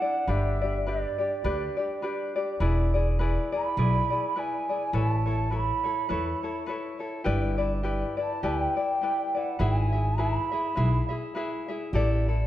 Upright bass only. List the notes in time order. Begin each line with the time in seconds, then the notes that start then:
0.27 G1
1.44 D2
2.60 E1
3.77 B1
4.93 A1
6.10 E2
7.26 G1
8.43 D2
9.60 G#1
10.77 B1
11.93 A1